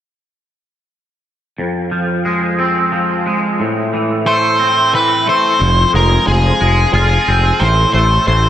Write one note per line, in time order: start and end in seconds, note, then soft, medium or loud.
1.58 3.26 F2 medium
1.91 2.91 F3 medium
2.25 3.25 G#3 medium
2.59 4.59 C4 medium
2.92 3.59 F3 medium
3.26 3.60 G#3 medium
3.60 5.27 A2 medium
3.93 4.92 E3 medium
4.26 5.25 A3 medium
4.26 4.94 C5 medium
4.59 5.60 C4 medium
4.93 5.60 E3 medium
4.93 5.29 B4 medium
5.26 5.60 A3 medium
5.26 5.91 C5 medium
5.59 5.84 F1 medium
5.59 7.27 F2 medium
5.93 6.17 F1 medium
5.93 6.60 G#3 medium
5.93 6.26 A#4 medium
6.27 6.51 F1 medium
6.27 7.61 F3 medium
6.27 6.90 G#4 medium
6.61 6.84 F1 medium
6.61 7.61 G#3 medium
6.93 7.17 F1 medium
6.93 7.61 F4 medium
6.93 7.63 G#4 medium
7.28 7.51 F1 medium
7.28 7.61 C4 medium
7.60 7.84 A1 medium
7.60 8.49 A2 medium
7.60 7.91 C5 medium
7.94 8.17 A1 medium
7.94 8.49 A3 medium
7.94 8.26 C5 medium
8.28 8.49 A1 medium
8.28 8.49 E3 medium
8.28 8.49 C5 medium